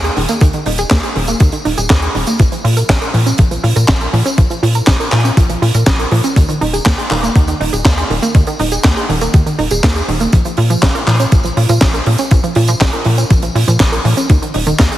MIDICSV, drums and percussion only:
0, 0, Header, 1, 2, 480
1, 0, Start_track
1, 0, Tempo, 495868
1, 400, Time_signature, 4, 2, 24, 8
1, 14500, End_track
2, 0, Start_track
2, 0, Title_t, "Drums"
2, 39, Note_on_c, 9, 42, 57
2, 47, Note_on_c, 9, 54, 35
2, 136, Note_off_c, 9, 42, 0
2, 144, Note_off_c, 9, 54, 0
2, 162, Note_on_c, 9, 46, 113
2, 258, Note_off_c, 9, 46, 0
2, 276, Note_on_c, 9, 54, 64
2, 278, Note_on_c, 9, 42, 62
2, 373, Note_off_c, 9, 54, 0
2, 375, Note_off_c, 9, 42, 0
2, 391, Note_on_c, 9, 54, 50
2, 400, Note_on_c, 9, 36, 115
2, 409, Note_on_c, 9, 42, 102
2, 488, Note_off_c, 9, 54, 0
2, 497, Note_off_c, 9, 36, 0
2, 505, Note_off_c, 9, 42, 0
2, 515, Note_on_c, 9, 42, 53
2, 525, Note_on_c, 9, 54, 27
2, 611, Note_off_c, 9, 42, 0
2, 622, Note_off_c, 9, 54, 0
2, 637, Note_on_c, 9, 46, 117
2, 734, Note_off_c, 9, 46, 0
2, 755, Note_on_c, 9, 54, 60
2, 759, Note_on_c, 9, 42, 62
2, 852, Note_off_c, 9, 54, 0
2, 856, Note_off_c, 9, 42, 0
2, 874, Note_on_c, 9, 39, 97
2, 880, Note_on_c, 9, 36, 101
2, 880, Note_on_c, 9, 54, 49
2, 881, Note_on_c, 9, 42, 97
2, 882, Note_on_c, 9, 38, 114
2, 971, Note_off_c, 9, 39, 0
2, 977, Note_off_c, 9, 36, 0
2, 977, Note_off_c, 9, 54, 0
2, 978, Note_off_c, 9, 38, 0
2, 978, Note_off_c, 9, 42, 0
2, 998, Note_on_c, 9, 54, 30
2, 1000, Note_on_c, 9, 42, 54
2, 1095, Note_off_c, 9, 54, 0
2, 1096, Note_off_c, 9, 42, 0
2, 1120, Note_on_c, 9, 46, 109
2, 1217, Note_off_c, 9, 46, 0
2, 1233, Note_on_c, 9, 54, 58
2, 1241, Note_on_c, 9, 42, 58
2, 1330, Note_off_c, 9, 54, 0
2, 1338, Note_off_c, 9, 42, 0
2, 1354, Note_on_c, 9, 42, 106
2, 1360, Note_on_c, 9, 36, 121
2, 1360, Note_on_c, 9, 54, 52
2, 1451, Note_off_c, 9, 42, 0
2, 1456, Note_off_c, 9, 54, 0
2, 1457, Note_off_c, 9, 36, 0
2, 1472, Note_on_c, 9, 42, 64
2, 1484, Note_on_c, 9, 54, 31
2, 1569, Note_off_c, 9, 42, 0
2, 1581, Note_off_c, 9, 54, 0
2, 1600, Note_on_c, 9, 46, 113
2, 1697, Note_off_c, 9, 46, 0
2, 1720, Note_on_c, 9, 54, 63
2, 1721, Note_on_c, 9, 42, 64
2, 1817, Note_off_c, 9, 54, 0
2, 1818, Note_off_c, 9, 42, 0
2, 1836, Note_on_c, 9, 42, 98
2, 1839, Note_on_c, 9, 38, 118
2, 1840, Note_on_c, 9, 36, 106
2, 1840, Note_on_c, 9, 39, 93
2, 1932, Note_off_c, 9, 42, 0
2, 1936, Note_off_c, 9, 38, 0
2, 1936, Note_off_c, 9, 39, 0
2, 1937, Note_off_c, 9, 36, 0
2, 1957, Note_on_c, 9, 42, 59
2, 1962, Note_on_c, 9, 54, 29
2, 2053, Note_off_c, 9, 42, 0
2, 2059, Note_off_c, 9, 54, 0
2, 2080, Note_on_c, 9, 46, 105
2, 2176, Note_off_c, 9, 46, 0
2, 2195, Note_on_c, 9, 54, 58
2, 2200, Note_on_c, 9, 42, 64
2, 2292, Note_off_c, 9, 54, 0
2, 2297, Note_off_c, 9, 42, 0
2, 2316, Note_on_c, 9, 42, 100
2, 2320, Note_on_c, 9, 36, 121
2, 2326, Note_on_c, 9, 54, 45
2, 2413, Note_off_c, 9, 42, 0
2, 2417, Note_off_c, 9, 36, 0
2, 2423, Note_off_c, 9, 54, 0
2, 2439, Note_on_c, 9, 42, 59
2, 2447, Note_on_c, 9, 54, 31
2, 2536, Note_off_c, 9, 42, 0
2, 2544, Note_off_c, 9, 54, 0
2, 2563, Note_on_c, 9, 46, 113
2, 2660, Note_off_c, 9, 46, 0
2, 2680, Note_on_c, 9, 54, 50
2, 2681, Note_on_c, 9, 42, 62
2, 2777, Note_off_c, 9, 42, 0
2, 2777, Note_off_c, 9, 54, 0
2, 2795, Note_on_c, 9, 42, 98
2, 2800, Note_on_c, 9, 36, 111
2, 2802, Note_on_c, 9, 54, 43
2, 2804, Note_on_c, 9, 38, 122
2, 2805, Note_on_c, 9, 39, 93
2, 2892, Note_off_c, 9, 42, 0
2, 2897, Note_off_c, 9, 36, 0
2, 2898, Note_off_c, 9, 54, 0
2, 2901, Note_off_c, 9, 38, 0
2, 2902, Note_off_c, 9, 39, 0
2, 2919, Note_on_c, 9, 42, 59
2, 2920, Note_on_c, 9, 54, 26
2, 3016, Note_off_c, 9, 42, 0
2, 3016, Note_off_c, 9, 54, 0
2, 3040, Note_on_c, 9, 46, 105
2, 3137, Note_off_c, 9, 46, 0
2, 3159, Note_on_c, 9, 42, 54
2, 3161, Note_on_c, 9, 54, 59
2, 3256, Note_off_c, 9, 42, 0
2, 3258, Note_off_c, 9, 54, 0
2, 3271, Note_on_c, 9, 42, 109
2, 3280, Note_on_c, 9, 36, 126
2, 3368, Note_off_c, 9, 42, 0
2, 3377, Note_off_c, 9, 36, 0
2, 3400, Note_on_c, 9, 42, 56
2, 3402, Note_on_c, 9, 54, 30
2, 3497, Note_off_c, 9, 42, 0
2, 3499, Note_off_c, 9, 54, 0
2, 3522, Note_on_c, 9, 46, 107
2, 3619, Note_off_c, 9, 46, 0
2, 3643, Note_on_c, 9, 54, 64
2, 3648, Note_on_c, 9, 42, 64
2, 3740, Note_off_c, 9, 54, 0
2, 3744, Note_off_c, 9, 42, 0
2, 3758, Note_on_c, 9, 39, 101
2, 3759, Note_on_c, 9, 42, 103
2, 3760, Note_on_c, 9, 36, 111
2, 3761, Note_on_c, 9, 38, 120
2, 3855, Note_off_c, 9, 39, 0
2, 3856, Note_off_c, 9, 42, 0
2, 3857, Note_off_c, 9, 36, 0
2, 3858, Note_off_c, 9, 38, 0
2, 3875, Note_on_c, 9, 54, 32
2, 3881, Note_on_c, 9, 42, 54
2, 3972, Note_off_c, 9, 54, 0
2, 3978, Note_off_c, 9, 42, 0
2, 4003, Note_on_c, 9, 46, 107
2, 4100, Note_off_c, 9, 46, 0
2, 4119, Note_on_c, 9, 42, 55
2, 4125, Note_on_c, 9, 54, 56
2, 4216, Note_off_c, 9, 42, 0
2, 4222, Note_off_c, 9, 54, 0
2, 4240, Note_on_c, 9, 36, 122
2, 4240, Note_on_c, 9, 42, 97
2, 4241, Note_on_c, 9, 54, 47
2, 4337, Note_off_c, 9, 36, 0
2, 4337, Note_off_c, 9, 42, 0
2, 4338, Note_off_c, 9, 54, 0
2, 4357, Note_on_c, 9, 54, 28
2, 4366, Note_on_c, 9, 42, 55
2, 4453, Note_off_c, 9, 54, 0
2, 4463, Note_off_c, 9, 42, 0
2, 4485, Note_on_c, 9, 46, 111
2, 4582, Note_off_c, 9, 46, 0
2, 4595, Note_on_c, 9, 42, 57
2, 4596, Note_on_c, 9, 54, 51
2, 4691, Note_off_c, 9, 42, 0
2, 4693, Note_off_c, 9, 54, 0
2, 4714, Note_on_c, 9, 39, 86
2, 4715, Note_on_c, 9, 38, 127
2, 4719, Note_on_c, 9, 54, 44
2, 4720, Note_on_c, 9, 36, 111
2, 4720, Note_on_c, 9, 42, 92
2, 4810, Note_off_c, 9, 39, 0
2, 4812, Note_off_c, 9, 38, 0
2, 4816, Note_off_c, 9, 54, 0
2, 4817, Note_off_c, 9, 36, 0
2, 4817, Note_off_c, 9, 42, 0
2, 4839, Note_on_c, 9, 54, 30
2, 4844, Note_on_c, 9, 42, 59
2, 4935, Note_off_c, 9, 54, 0
2, 4941, Note_off_c, 9, 42, 0
2, 4957, Note_on_c, 9, 39, 74
2, 4961, Note_on_c, 9, 46, 99
2, 5054, Note_off_c, 9, 39, 0
2, 5058, Note_off_c, 9, 46, 0
2, 5082, Note_on_c, 9, 54, 55
2, 5091, Note_on_c, 9, 42, 51
2, 5179, Note_off_c, 9, 54, 0
2, 5188, Note_off_c, 9, 42, 0
2, 5200, Note_on_c, 9, 36, 127
2, 5201, Note_on_c, 9, 54, 50
2, 5203, Note_on_c, 9, 42, 97
2, 5297, Note_off_c, 9, 36, 0
2, 5298, Note_off_c, 9, 54, 0
2, 5300, Note_off_c, 9, 42, 0
2, 5319, Note_on_c, 9, 42, 57
2, 5319, Note_on_c, 9, 54, 29
2, 5416, Note_off_c, 9, 42, 0
2, 5416, Note_off_c, 9, 54, 0
2, 5445, Note_on_c, 9, 46, 118
2, 5542, Note_off_c, 9, 46, 0
2, 5561, Note_on_c, 9, 54, 58
2, 5562, Note_on_c, 9, 42, 54
2, 5657, Note_off_c, 9, 54, 0
2, 5659, Note_off_c, 9, 42, 0
2, 5674, Note_on_c, 9, 42, 88
2, 5678, Note_on_c, 9, 38, 121
2, 5680, Note_on_c, 9, 36, 116
2, 5684, Note_on_c, 9, 39, 102
2, 5770, Note_off_c, 9, 42, 0
2, 5774, Note_off_c, 9, 38, 0
2, 5777, Note_off_c, 9, 36, 0
2, 5781, Note_off_c, 9, 39, 0
2, 5800, Note_on_c, 9, 54, 31
2, 5804, Note_on_c, 9, 42, 62
2, 5897, Note_off_c, 9, 54, 0
2, 5900, Note_off_c, 9, 42, 0
2, 5917, Note_on_c, 9, 46, 107
2, 6014, Note_off_c, 9, 46, 0
2, 6037, Note_on_c, 9, 54, 50
2, 6040, Note_on_c, 9, 42, 58
2, 6134, Note_off_c, 9, 54, 0
2, 6137, Note_off_c, 9, 42, 0
2, 6160, Note_on_c, 9, 36, 127
2, 6165, Note_on_c, 9, 54, 45
2, 6167, Note_on_c, 9, 42, 95
2, 6257, Note_off_c, 9, 36, 0
2, 6262, Note_off_c, 9, 54, 0
2, 6264, Note_off_c, 9, 42, 0
2, 6277, Note_on_c, 9, 54, 32
2, 6288, Note_on_c, 9, 42, 60
2, 6374, Note_off_c, 9, 54, 0
2, 6385, Note_off_c, 9, 42, 0
2, 6403, Note_on_c, 9, 46, 115
2, 6499, Note_off_c, 9, 46, 0
2, 6523, Note_on_c, 9, 54, 59
2, 6524, Note_on_c, 9, 42, 52
2, 6620, Note_off_c, 9, 54, 0
2, 6621, Note_off_c, 9, 42, 0
2, 6638, Note_on_c, 9, 39, 93
2, 6639, Note_on_c, 9, 54, 49
2, 6640, Note_on_c, 9, 36, 113
2, 6647, Note_on_c, 9, 38, 119
2, 6649, Note_on_c, 9, 42, 97
2, 6735, Note_off_c, 9, 39, 0
2, 6736, Note_off_c, 9, 54, 0
2, 6737, Note_off_c, 9, 36, 0
2, 6744, Note_off_c, 9, 38, 0
2, 6746, Note_off_c, 9, 42, 0
2, 6756, Note_on_c, 9, 54, 27
2, 6766, Note_on_c, 9, 42, 60
2, 6852, Note_off_c, 9, 54, 0
2, 6863, Note_off_c, 9, 42, 0
2, 6878, Note_on_c, 9, 39, 73
2, 6879, Note_on_c, 9, 46, 92
2, 6975, Note_off_c, 9, 39, 0
2, 6975, Note_off_c, 9, 46, 0
2, 7001, Note_on_c, 9, 42, 55
2, 7010, Note_on_c, 9, 54, 61
2, 7098, Note_off_c, 9, 42, 0
2, 7107, Note_off_c, 9, 54, 0
2, 7120, Note_on_c, 9, 36, 127
2, 7126, Note_on_c, 9, 42, 96
2, 7126, Note_on_c, 9, 54, 48
2, 7217, Note_off_c, 9, 36, 0
2, 7223, Note_off_c, 9, 42, 0
2, 7223, Note_off_c, 9, 54, 0
2, 7236, Note_on_c, 9, 54, 28
2, 7242, Note_on_c, 9, 42, 53
2, 7332, Note_off_c, 9, 54, 0
2, 7338, Note_off_c, 9, 42, 0
2, 7365, Note_on_c, 9, 46, 102
2, 7462, Note_off_c, 9, 46, 0
2, 7488, Note_on_c, 9, 42, 58
2, 7488, Note_on_c, 9, 54, 60
2, 7585, Note_off_c, 9, 42, 0
2, 7585, Note_off_c, 9, 54, 0
2, 7598, Note_on_c, 9, 42, 98
2, 7601, Note_on_c, 9, 36, 119
2, 7601, Note_on_c, 9, 38, 112
2, 7603, Note_on_c, 9, 39, 98
2, 7695, Note_off_c, 9, 42, 0
2, 7698, Note_off_c, 9, 36, 0
2, 7698, Note_off_c, 9, 38, 0
2, 7700, Note_off_c, 9, 39, 0
2, 7718, Note_on_c, 9, 54, 30
2, 7722, Note_on_c, 9, 42, 59
2, 7815, Note_off_c, 9, 54, 0
2, 7819, Note_off_c, 9, 42, 0
2, 7845, Note_on_c, 9, 46, 100
2, 7942, Note_off_c, 9, 46, 0
2, 7963, Note_on_c, 9, 42, 52
2, 7964, Note_on_c, 9, 54, 57
2, 8060, Note_off_c, 9, 42, 0
2, 8060, Note_off_c, 9, 54, 0
2, 8078, Note_on_c, 9, 54, 48
2, 8081, Note_on_c, 9, 36, 126
2, 8081, Note_on_c, 9, 42, 95
2, 8174, Note_off_c, 9, 54, 0
2, 8177, Note_off_c, 9, 36, 0
2, 8178, Note_off_c, 9, 42, 0
2, 8197, Note_on_c, 9, 42, 53
2, 8203, Note_on_c, 9, 54, 30
2, 8293, Note_off_c, 9, 42, 0
2, 8300, Note_off_c, 9, 54, 0
2, 8318, Note_on_c, 9, 46, 114
2, 8415, Note_off_c, 9, 46, 0
2, 8437, Note_on_c, 9, 42, 50
2, 8437, Note_on_c, 9, 54, 58
2, 8534, Note_off_c, 9, 42, 0
2, 8534, Note_off_c, 9, 54, 0
2, 8560, Note_on_c, 9, 39, 90
2, 8561, Note_on_c, 9, 36, 109
2, 8562, Note_on_c, 9, 38, 120
2, 8568, Note_on_c, 9, 42, 97
2, 8657, Note_off_c, 9, 36, 0
2, 8657, Note_off_c, 9, 39, 0
2, 8659, Note_off_c, 9, 38, 0
2, 8665, Note_off_c, 9, 42, 0
2, 8675, Note_on_c, 9, 54, 33
2, 8685, Note_on_c, 9, 42, 60
2, 8772, Note_off_c, 9, 54, 0
2, 8782, Note_off_c, 9, 42, 0
2, 8805, Note_on_c, 9, 46, 93
2, 8902, Note_off_c, 9, 46, 0
2, 8918, Note_on_c, 9, 54, 55
2, 8930, Note_on_c, 9, 42, 52
2, 9015, Note_off_c, 9, 54, 0
2, 9027, Note_off_c, 9, 42, 0
2, 9038, Note_on_c, 9, 42, 92
2, 9040, Note_on_c, 9, 36, 124
2, 9040, Note_on_c, 9, 54, 54
2, 9135, Note_off_c, 9, 42, 0
2, 9136, Note_off_c, 9, 54, 0
2, 9137, Note_off_c, 9, 36, 0
2, 9161, Note_on_c, 9, 54, 29
2, 9164, Note_on_c, 9, 42, 54
2, 9258, Note_off_c, 9, 54, 0
2, 9261, Note_off_c, 9, 42, 0
2, 9280, Note_on_c, 9, 46, 102
2, 9377, Note_off_c, 9, 46, 0
2, 9394, Note_on_c, 9, 42, 53
2, 9396, Note_on_c, 9, 54, 63
2, 9491, Note_off_c, 9, 42, 0
2, 9493, Note_off_c, 9, 54, 0
2, 9515, Note_on_c, 9, 54, 53
2, 9520, Note_on_c, 9, 36, 115
2, 9523, Note_on_c, 9, 39, 85
2, 9524, Note_on_c, 9, 42, 94
2, 9526, Note_on_c, 9, 38, 116
2, 9612, Note_off_c, 9, 54, 0
2, 9617, Note_off_c, 9, 36, 0
2, 9620, Note_off_c, 9, 39, 0
2, 9621, Note_off_c, 9, 42, 0
2, 9623, Note_off_c, 9, 38, 0
2, 9639, Note_on_c, 9, 42, 53
2, 9641, Note_on_c, 9, 54, 35
2, 9736, Note_off_c, 9, 42, 0
2, 9738, Note_off_c, 9, 54, 0
2, 9763, Note_on_c, 9, 46, 97
2, 9860, Note_off_c, 9, 46, 0
2, 9874, Note_on_c, 9, 42, 53
2, 9883, Note_on_c, 9, 54, 61
2, 9971, Note_off_c, 9, 42, 0
2, 9980, Note_off_c, 9, 54, 0
2, 9994, Note_on_c, 9, 54, 50
2, 10000, Note_on_c, 9, 36, 121
2, 10003, Note_on_c, 9, 42, 94
2, 10091, Note_off_c, 9, 54, 0
2, 10097, Note_off_c, 9, 36, 0
2, 10099, Note_off_c, 9, 42, 0
2, 10113, Note_on_c, 9, 54, 30
2, 10122, Note_on_c, 9, 42, 59
2, 10210, Note_off_c, 9, 54, 0
2, 10218, Note_off_c, 9, 42, 0
2, 10231, Note_on_c, 9, 46, 116
2, 10327, Note_off_c, 9, 46, 0
2, 10359, Note_on_c, 9, 42, 53
2, 10362, Note_on_c, 9, 54, 56
2, 10456, Note_off_c, 9, 42, 0
2, 10459, Note_off_c, 9, 54, 0
2, 10472, Note_on_c, 9, 54, 47
2, 10477, Note_on_c, 9, 42, 92
2, 10479, Note_on_c, 9, 39, 84
2, 10480, Note_on_c, 9, 36, 108
2, 10483, Note_on_c, 9, 38, 116
2, 10569, Note_off_c, 9, 54, 0
2, 10574, Note_off_c, 9, 42, 0
2, 10576, Note_off_c, 9, 39, 0
2, 10577, Note_off_c, 9, 36, 0
2, 10580, Note_off_c, 9, 38, 0
2, 10598, Note_on_c, 9, 54, 30
2, 10603, Note_on_c, 9, 42, 59
2, 10695, Note_off_c, 9, 54, 0
2, 10699, Note_off_c, 9, 42, 0
2, 10718, Note_on_c, 9, 46, 99
2, 10721, Note_on_c, 9, 39, 68
2, 10815, Note_off_c, 9, 46, 0
2, 10818, Note_off_c, 9, 39, 0
2, 10836, Note_on_c, 9, 42, 59
2, 10843, Note_on_c, 9, 54, 60
2, 10933, Note_off_c, 9, 42, 0
2, 10940, Note_off_c, 9, 54, 0
2, 10956, Note_on_c, 9, 42, 98
2, 10960, Note_on_c, 9, 36, 127
2, 10960, Note_on_c, 9, 54, 56
2, 11053, Note_off_c, 9, 42, 0
2, 11057, Note_off_c, 9, 36, 0
2, 11057, Note_off_c, 9, 54, 0
2, 11070, Note_on_c, 9, 54, 33
2, 11088, Note_on_c, 9, 42, 59
2, 11166, Note_off_c, 9, 54, 0
2, 11185, Note_off_c, 9, 42, 0
2, 11200, Note_on_c, 9, 46, 111
2, 11296, Note_off_c, 9, 46, 0
2, 11315, Note_on_c, 9, 42, 57
2, 11318, Note_on_c, 9, 54, 62
2, 11412, Note_off_c, 9, 42, 0
2, 11415, Note_off_c, 9, 54, 0
2, 11432, Note_on_c, 9, 54, 58
2, 11433, Note_on_c, 9, 38, 127
2, 11434, Note_on_c, 9, 42, 95
2, 11438, Note_on_c, 9, 39, 88
2, 11440, Note_on_c, 9, 36, 113
2, 11529, Note_off_c, 9, 54, 0
2, 11530, Note_off_c, 9, 38, 0
2, 11530, Note_off_c, 9, 42, 0
2, 11534, Note_off_c, 9, 39, 0
2, 11537, Note_off_c, 9, 36, 0
2, 11552, Note_on_c, 9, 54, 34
2, 11562, Note_on_c, 9, 42, 61
2, 11649, Note_off_c, 9, 54, 0
2, 11659, Note_off_c, 9, 42, 0
2, 11676, Note_on_c, 9, 46, 107
2, 11772, Note_off_c, 9, 46, 0
2, 11793, Note_on_c, 9, 42, 53
2, 11794, Note_on_c, 9, 54, 61
2, 11889, Note_off_c, 9, 42, 0
2, 11891, Note_off_c, 9, 54, 0
2, 11914, Note_on_c, 9, 42, 96
2, 11918, Note_on_c, 9, 54, 49
2, 11920, Note_on_c, 9, 36, 115
2, 12010, Note_off_c, 9, 42, 0
2, 12015, Note_off_c, 9, 54, 0
2, 12017, Note_off_c, 9, 36, 0
2, 12039, Note_on_c, 9, 42, 53
2, 12042, Note_on_c, 9, 54, 30
2, 12135, Note_off_c, 9, 42, 0
2, 12138, Note_off_c, 9, 54, 0
2, 12149, Note_on_c, 9, 46, 106
2, 12246, Note_off_c, 9, 46, 0
2, 12269, Note_on_c, 9, 54, 62
2, 12274, Note_on_c, 9, 42, 54
2, 12366, Note_off_c, 9, 54, 0
2, 12371, Note_off_c, 9, 42, 0
2, 12395, Note_on_c, 9, 42, 107
2, 12395, Note_on_c, 9, 54, 54
2, 12398, Note_on_c, 9, 39, 80
2, 12400, Note_on_c, 9, 36, 104
2, 12404, Note_on_c, 9, 38, 116
2, 12492, Note_off_c, 9, 42, 0
2, 12492, Note_off_c, 9, 54, 0
2, 12495, Note_off_c, 9, 39, 0
2, 12497, Note_off_c, 9, 36, 0
2, 12501, Note_off_c, 9, 38, 0
2, 12513, Note_on_c, 9, 42, 53
2, 12518, Note_on_c, 9, 54, 29
2, 12610, Note_off_c, 9, 42, 0
2, 12615, Note_off_c, 9, 54, 0
2, 12627, Note_on_c, 9, 46, 107
2, 12724, Note_off_c, 9, 46, 0
2, 12756, Note_on_c, 9, 42, 52
2, 12760, Note_on_c, 9, 54, 67
2, 12853, Note_off_c, 9, 42, 0
2, 12857, Note_off_c, 9, 54, 0
2, 12876, Note_on_c, 9, 54, 52
2, 12877, Note_on_c, 9, 42, 101
2, 12880, Note_on_c, 9, 36, 124
2, 12973, Note_off_c, 9, 54, 0
2, 12974, Note_off_c, 9, 42, 0
2, 12977, Note_off_c, 9, 36, 0
2, 12994, Note_on_c, 9, 42, 59
2, 12994, Note_on_c, 9, 54, 31
2, 13091, Note_off_c, 9, 42, 0
2, 13091, Note_off_c, 9, 54, 0
2, 13122, Note_on_c, 9, 46, 126
2, 13219, Note_off_c, 9, 46, 0
2, 13239, Note_on_c, 9, 42, 61
2, 13243, Note_on_c, 9, 54, 66
2, 13336, Note_off_c, 9, 42, 0
2, 13340, Note_off_c, 9, 54, 0
2, 13358, Note_on_c, 9, 38, 111
2, 13359, Note_on_c, 9, 39, 92
2, 13360, Note_on_c, 9, 36, 105
2, 13361, Note_on_c, 9, 42, 90
2, 13362, Note_on_c, 9, 54, 52
2, 13455, Note_off_c, 9, 38, 0
2, 13456, Note_off_c, 9, 39, 0
2, 13457, Note_off_c, 9, 36, 0
2, 13458, Note_off_c, 9, 42, 0
2, 13459, Note_off_c, 9, 54, 0
2, 13481, Note_on_c, 9, 42, 62
2, 13482, Note_on_c, 9, 54, 35
2, 13578, Note_off_c, 9, 42, 0
2, 13579, Note_off_c, 9, 54, 0
2, 13600, Note_on_c, 9, 46, 113
2, 13697, Note_off_c, 9, 46, 0
2, 13715, Note_on_c, 9, 42, 56
2, 13722, Note_on_c, 9, 54, 64
2, 13812, Note_off_c, 9, 42, 0
2, 13819, Note_off_c, 9, 54, 0
2, 13837, Note_on_c, 9, 42, 99
2, 13840, Note_on_c, 9, 36, 116
2, 13845, Note_on_c, 9, 54, 44
2, 13934, Note_off_c, 9, 42, 0
2, 13937, Note_off_c, 9, 36, 0
2, 13942, Note_off_c, 9, 54, 0
2, 13963, Note_on_c, 9, 42, 61
2, 13964, Note_on_c, 9, 54, 32
2, 14060, Note_off_c, 9, 42, 0
2, 14061, Note_off_c, 9, 54, 0
2, 14075, Note_on_c, 9, 46, 111
2, 14172, Note_off_c, 9, 46, 0
2, 14190, Note_on_c, 9, 42, 60
2, 14198, Note_on_c, 9, 54, 64
2, 14287, Note_off_c, 9, 42, 0
2, 14295, Note_off_c, 9, 54, 0
2, 14320, Note_on_c, 9, 36, 106
2, 14320, Note_on_c, 9, 39, 88
2, 14322, Note_on_c, 9, 38, 111
2, 14324, Note_on_c, 9, 42, 101
2, 14325, Note_on_c, 9, 54, 48
2, 14417, Note_off_c, 9, 36, 0
2, 14417, Note_off_c, 9, 39, 0
2, 14419, Note_off_c, 9, 38, 0
2, 14421, Note_off_c, 9, 42, 0
2, 14422, Note_off_c, 9, 54, 0
2, 14435, Note_on_c, 9, 54, 32
2, 14443, Note_on_c, 9, 42, 60
2, 14500, Note_off_c, 9, 42, 0
2, 14500, Note_off_c, 9, 54, 0
2, 14500, End_track
0, 0, End_of_file